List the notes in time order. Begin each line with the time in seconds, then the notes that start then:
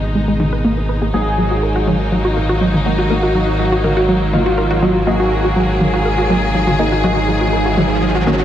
Already playing: G#1 B2 G#3 D#4
0.15 G#3
0.28 G#3
0.40 D#4, mid tom
0.53 B4
0.64 A#3
0.77 G#4 A#4 B4
0.89 B4
1.02 G#4
1.14 G#1 D#3 F#3 A#3 D#4 F#4 G#4 D#5
1.38 F#3
1.51 F#4
1.63 A#4
1.76 F#4
1.87 F#3, mid tom
2.12 F#3
2.25 F#4
2.37 A#3 F#4 A#4 D#5
2.49 F#4
2.61 F#3
2.74 mid tom
2.86 F#3 A#3 F#4 D#5
2.99 F#4
3.10 A#3 F#4 A#4 D#5
3.23 F#4
3.35 F#3
3.60 F#3
3.72 F#4
3.84 A#4, mid tom
3.97 F#4
4.09 F#3
4.33 F#3 A#3 F4 D#5, mid tom
4.46 F#4
4.58 A#4
4.71 F#4
4.83 F#3 A#3 F#4 D#5
5.07 F#3 A#3 F#4 G#4 D#5, riser
5.20 F#4
5.32 A#4
5.44 F#4
5.56 F#3
5.81 F#3, mid tom
5.94 F#4
6.05 A#4
6.18 F#4
6.30 F#3 A#3 F#4 D#5
6.55 F#3
6.67 F#4, mid tom
6.79 A#3 D#4 F#4 A#4 D#5
6.92 F#4
7.04 F#3 A#3 F#4 D#5
7.28 F#3
7.41 F#4
7.53 A#4
7.66 F#4
7.78 F#3, mid tom
8.02 F#3
8.15 F#4
8.27 A#3 C#4 F#4 A#4 D#5, mid tom
8.40 F#4